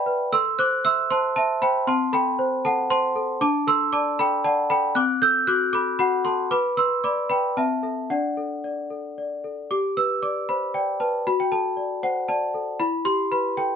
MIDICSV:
0, 0, Header, 1, 2, 480
1, 0, Start_track
1, 0, Key_signature, 1, "major"
1, 0, Tempo, 515464
1, 295, Time_signature, 3, 2, 24, 8
1, 5095, Tempo, 527704
1, 9415, Tempo, 516351
1, 12703, End_track
2, 0, Start_track
2, 0, Title_t, "Celesta"
2, 0, Program_c, 0, 8
2, 0, Control_c, 0, 64, 127
2, 0, Note_on_c, 0, 71, 53
2, 0, Note_on_c, 0, 74, 61
2, 0, Note_on_c, 0, 76, 74
2, 0, Note_on_c, 0, 78, 81
2, 0, Note_on_c, 0, 79, 78
2, 0, Note_on_c, 0, 81, 109
2, 0, Note_on_c, 0, 83, 119
2, 59, Note_off_c, 0, 71, 0
2, 59, Note_on_c, 0, 71, 56
2, 203, Note_off_c, 0, 74, 0
2, 272, Note_off_c, 0, 79, 0
2, 298, Note_off_c, 0, 71, 0
2, 300, Note_off_c, 0, 83, 0
2, 303, Note_on_c, 0, 69, 72
2, 303, Note_on_c, 0, 88, 118
2, 315, Control_c, 0, 64, 0
2, 315, Note_on_c, 0, 84, 82
2, 316, Note_off_c, 0, 78, 0
2, 317, Note_off_c, 0, 81, 0
2, 322, Note_off_c, 0, 76, 0
2, 440, Control_c, 0, 64, 127
2, 531, Note_off_c, 0, 84, 0
2, 541, Note_off_c, 0, 88, 0
2, 544, Note_on_c, 0, 72, 60
2, 547, Note_on_c, 0, 90, 125
2, 556, Note_on_c, 0, 86, 91
2, 771, Note_off_c, 0, 86, 0
2, 783, Note_off_c, 0, 90, 0
2, 788, Note_on_c, 0, 88, 116
2, 789, Note_on_c, 0, 76, 55
2, 801, Note_on_c, 0, 84, 75
2, 925, Note_off_c, 0, 72, 0
2, 1013, Note_off_c, 0, 84, 0
2, 1022, Note_off_c, 0, 88, 0
2, 1029, Note_on_c, 0, 84, 116
2, 1030, Note_on_c, 0, 72, 62
2, 1040, Note_on_c, 0, 81, 83
2, 1166, Note_off_c, 0, 76, 0
2, 1252, Note_off_c, 0, 81, 0
2, 1263, Note_off_c, 0, 84, 0
2, 1268, Note_on_c, 0, 81, 121
2, 1283, Note_on_c, 0, 76, 84
2, 1406, Note_off_c, 0, 72, 0
2, 1493, Note_off_c, 0, 76, 0
2, 1501, Note_off_c, 0, 81, 0
2, 1504, Note_on_c, 0, 72, 64
2, 1507, Note_on_c, 0, 83, 112
2, 1516, Note_on_c, 0, 79, 88
2, 1701, Note_off_c, 0, 69, 0
2, 1728, Note_off_c, 0, 79, 0
2, 1738, Note_off_c, 0, 72, 0
2, 1740, Note_off_c, 0, 83, 0
2, 1743, Note_on_c, 0, 60, 76
2, 1746, Note_on_c, 0, 84, 104
2, 1751, Control_c, 0, 64, 0
2, 1756, Note_on_c, 0, 81, 86
2, 1902, Control_c, 0, 64, 127
2, 1967, Note_off_c, 0, 81, 0
2, 1978, Note_off_c, 0, 84, 0
2, 1981, Note_on_c, 0, 69, 59
2, 1984, Note_on_c, 0, 83, 118
2, 1995, Note_on_c, 0, 79, 85
2, 2224, Note_on_c, 0, 72, 67
2, 2357, Note_off_c, 0, 69, 0
2, 2428, Note_off_c, 0, 79, 0
2, 2455, Note_off_c, 0, 83, 0
2, 2466, Note_on_c, 0, 69, 64
2, 2466, Note_on_c, 0, 81, 109
2, 2479, Note_on_c, 0, 78, 85
2, 2600, Note_off_c, 0, 72, 0
2, 2688, Note_off_c, 0, 78, 0
2, 2698, Note_off_c, 0, 81, 0
2, 2703, Note_on_c, 0, 72, 68
2, 2704, Note_on_c, 0, 84, 124
2, 2714, Note_on_c, 0, 81, 99
2, 2842, Note_off_c, 0, 69, 0
2, 2940, Note_on_c, 0, 69, 69
2, 3080, Note_off_c, 0, 72, 0
2, 3136, Note_off_c, 0, 60, 0
2, 3148, Note_off_c, 0, 81, 0
2, 3174, Note_off_c, 0, 69, 0
2, 3175, Note_on_c, 0, 62, 80
2, 3176, Note_off_c, 0, 84, 0
2, 3176, Note_on_c, 0, 86, 122
2, 3183, Note_on_c, 0, 81, 102
2, 3184, Control_c, 0, 64, 0
2, 3359, Control_c, 0, 64, 127
2, 3399, Note_off_c, 0, 81, 0
2, 3412, Note_off_c, 0, 86, 0
2, 3418, Note_on_c, 0, 69, 66
2, 3423, Note_on_c, 0, 88, 127
2, 3429, Note_on_c, 0, 84, 99
2, 3643, Note_off_c, 0, 84, 0
2, 3655, Note_on_c, 0, 86, 109
2, 3656, Note_off_c, 0, 88, 0
2, 3658, Note_on_c, 0, 74, 63
2, 3664, Note_on_c, 0, 81, 91
2, 3797, Note_off_c, 0, 69, 0
2, 3880, Note_off_c, 0, 81, 0
2, 3892, Note_off_c, 0, 86, 0
2, 3903, Note_on_c, 0, 83, 120
2, 3904, Note_on_c, 0, 69, 66
2, 3917, Note_on_c, 0, 79, 85
2, 4038, Note_off_c, 0, 74, 0
2, 4128, Note_off_c, 0, 79, 0
2, 4137, Note_off_c, 0, 83, 0
2, 4138, Note_on_c, 0, 74, 69
2, 4140, Note_on_c, 0, 81, 107
2, 4151, Note_on_c, 0, 78, 74
2, 4281, Note_off_c, 0, 69, 0
2, 4365, Note_off_c, 0, 78, 0
2, 4375, Note_off_c, 0, 81, 0
2, 4376, Note_on_c, 0, 83, 115
2, 4378, Note_on_c, 0, 69, 64
2, 4387, Note_on_c, 0, 79, 91
2, 4519, Note_off_c, 0, 74, 0
2, 4578, Note_off_c, 0, 62, 0
2, 4604, Note_off_c, 0, 79, 0
2, 4611, Note_on_c, 0, 90, 119
2, 4615, Note_off_c, 0, 69, 0
2, 4615, Note_off_c, 0, 83, 0
2, 4615, Note_on_c, 0, 60, 78
2, 4621, Note_on_c, 0, 86, 92
2, 4629, Control_c, 0, 64, 0
2, 4801, Control_c, 0, 64, 127
2, 4841, Note_off_c, 0, 86, 0
2, 4853, Note_off_c, 0, 90, 0
2, 4859, Note_on_c, 0, 69, 62
2, 4859, Note_on_c, 0, 91, 127
2, 4869, Note_on_c, 0, 88, 98
2, 5085, Note_off_c, 0, 88, 0
2, 5097, Note_off_c, 0, 91, 0
2, 5097, Note_on_c, 0, 66, 58
2, 5097, Note_on_c, 0, 90, 124
2, 5107, Note_on_c, 0, 86, 84
2, 5238, Note_off_c, 0, 69, 0
2, 5320, Note_off_c, 0, 86, 0
2, 5329, Note_on_c, 0, 86, 118
2, 5331, Note_off_c, 0, 90, 0
2, 5332, Note_on_c, 0, 69, 58
2, 5345, Note_on_c, 0, 83, 90
2, 5473, Note_off_c, 0, 66, 0
2, 5556, Note_off_c, 0, 83, 0
2, 5567, Note_off_c, 0, 86, 0
2, 5567, Note_on_c, 0, 83, 125
2, 5568, Note_on_c, 0, 66, 58
2, 5576, Note_on_c, 0, 78, 89
2, 5710, Note_off_c, 0, 69, 0
2, 5793, Note_off_c, 0, 78, 0
2, 5800, Note_on_c, 0, 84, 97
2, 5804, Note_off_c, 0, 83, 0
2, 5804, Note_on_c, 0, 69, 54
2, 5812, Note_on_c, 0, 81, 73
2, 5947, Note_off_c, 0, 66, 0
2, 6007, Note_off_c, 0, 60, 0
2, 6029, Note_off_c, 0, 81, 0
2, 6039, Note_on_c, 0, 71, 71
2, 6039, Note_on_c, 0, 86, 98
2, 6040, Note_off_c, 0, 84, 0
2, 6041, Note_off_c, 0, 69, 0
2, 6050, Note_on_c, 0, 83, 84
2, 6057, Control_c, 0, 64, 0
2, 6230, Control_c, 0, 64, 127
2, 6267, Note_off_c, 0, 71, 0
2, 6268, Note_off_c, 0, 83, 0
2, 6278, Note_on_c, 0, 71, 58
2, 6279, Note_off_c, 0, 86, 0
2, 6279, Note_on_c, 0, 88, 108
2, 6289, Note_on_c, 0, 84, 85
2, 6507, Note_off_c, 0, 84, 0
2, 6518, Note_off_c, 0, 88, 0
2, 6521, Note_on_c, 0, 74, 58
2, 6521, Note_on_c, 0, 86, 95
2, 6529, Note_on_c, 0, 83, 74
2, 6661, Note_off_c, 0, 71, 0
2, 6743, Note_off_c, 0, 83, 0
2, 6754, Note_on_c, 0, 71, 50
2, 6754, Note_on_c, 0, 83, 98
2, 6759, Note_off_c, 0, 86, 0
2, 6768, Note_on_c, 0, 79, 72
2, 6903, Note_off_c, 0, 74, 0
2, 6987, Note_off_c, 0, 79, 0
2, 6997, Note_off_c, 0, 71, 0
2, 6997, Note_off_c, 0, 83, 0
2, 7003, Note_on_c, 0, 60, 70
2, 7005, Note_on_c, 0, 81, 101
2, 7013, Note_on_c, 0, 76, 70
2, 7015, Control_c, 0, 64, 0
2, 7149, Control_c, 0, 64, 127
2, 7233, Note_off_c, 0, 76, 0
2, 7239, Note_on_c, 0, 69, 42
2, 7244, Note_on_c, 0, 76, 46
2, 7458, Note_off_c, 0, 69, 0
2, 7461, Note_off_c, 0, 76, 0
2, 7471, Note_off_c, 0, 60, 0
2, 7486, Note_off_c, 0, 81, 0
2, 7487, Note_on_c, 0, 62, 56
2, 7488, Note_on_c, 0, 78, 80
2, 7496, Note_on_c, 0, 74, 55
2, 7502, Control_c, 0, 64, 0
2, 7663, Control_c, 0, 64, 127
2, 7733, Note_on_c, 0, 69, 45
2, 7968, Note_off_c, 0, 74, 0
2, 7979, Note_on_c, 0, 74, 46
2, 8118, Note_off_c, 0, 69, 0
2, 8218, Note_on_c, 0, 69, 43
2, 8362, Note_off_c, 0, 74, 0
2, 8456, Note_off_c, 0, 78, 0
2, 8468, Note_on_c, 0, 74, 45
2, 8603, Note_off_c, 0, 69, 0
2, 8707, Note_on_c, 0, 69, 45
2, 8850, Note_off_c, 0, 74, 0
2, 8904, Note_off_c, 0, 62, 0
2, 8944, Note_off_c, 0, 69, 0
2, 8947, Note_on_c, 0, 86, 94
2, 8950, Note_on_c, 0, 67, 60
2, 8954, Control_c, 0, 64, 0
2, 9127, Control_c, 0, 64, 127
2, 9181, Note_off_c, 0, 86, 0
2, 9187, Note_on_c, 0, 88, 96
2, 9188, Note_on_c, 0, 71, 48
2, 9419, Note_off_c, 0, 88, 0
2, 9419, Note_on_c, 0, 74, 46
2, 9420, Note_on_c, 0, 86, 87
2, 9564, Note_off_c, 0, 71, 0
2, 9658, Note_off_c, 0, 86, 0
2, 9664, Note_on_c, 0, 83, 90
2, 9667, Note_on_c, 0, 72, 43
2, 9802, Note_off_c, 0, 74, 0
2, 9900, Note_off_c, 0, 83, 0
2, 9900, Note_on_c, 0, 74, 51
2, 9901, Note_on_c, 0, 79, 79
2, 9902, Note_off_c, 0, 72, 0
2, 10139, Note_off_c, 0, 79, 0
2, 10139, Note_on_c, 0, 81, 84
2, 10142, Note_on_c, 0, 71, 53
2, 10283, Note_off_c, 0, 74, 0
2, 10346, Note_off_c, 0, 67, 0
2, 10379, Note_off_c, 0, 81, 0
2, 10380, Note_off_c, 0, 71, 0
2, 10389, Note_on_c, 0, 66, 57
2, 10389, Note_on_c, 0, 83, 100
2, 10391, Control_c, 0, 64, 0
2, 10503, Note_off_c, 0, 83, 0
2, 10511, Note_on_c, 0, 79, 80
2, 10527, Control_c, 0, 64, 127
2, 10618, Note_on_c, 0, 69, 47
2, 10621, Note_on_c, 0, 81, 93
2, 10623, Note_off_c, 0, 79, 0
2, 10854, Note_on_c, 0, 74, 46
2, 10999, Note_off_c, 0, 69, 0
2, 11095, Note_off_c, 0, 81, 0
2, 11095, Note_on_c, 0, 72, 46
2, 11099, Note_on_c, 0, 78, 88
2, 11236, Note_off_c, 0, 74, 0
2, 11333, Note_off_c, 0, 72, 0
2, 11333, Note_on_c, 0, 81, 92
2, 11335, Note_off_c, 0, 78, 0
2, 11337, Note_on_c, 0, 74, 54
2, 11574, Note_on_c, 0, 69, 54
2, 11718, Note_off_c, 0, 74, 0
2, 11780, Note_off_c, 0, 66, 0
2, 11809, Note_on_c, 0, 64, 64
2, 11809, Note_on_c, 0, 83, 95
2, 11812, Note_off_c, 0, 81, 0
2, 11813, Note_off_c, 0, 69, 0
2, 11827, Control_c, 0, 64, 0
2, 11955, Control_c, 0, 64, 127
2, 12044, Note_on_c, 0, 67, 53
2, 12047, Note_on_c, 0, 84, 112
2, 12049, Note_off_c, 0, 83, 0
2, 12288, Note_off_c, 0, 84, 0
2, 12290, Note_on_c, 0, 71, 49
2, 12292, Note_on_c, 0, 83, 89
2, 12431, Note_off_c, 0, 67, 0
2, 12532, Note_off_c, 0, 83, 0
2, 12532, Note_on_c, 0, 69, 43
2, 12532, Note_on_c, 0, 79, 89
2, 12677, Note_off_c, 0, 71, 0
2, 12703, Note_off_c, 0, 64, 0
2, 12703, Note_off_c, 0, 69, 0
2, 12703, Note_off_c, 0, 79, 0
2, 12703, End_track
0, 0, End_of_file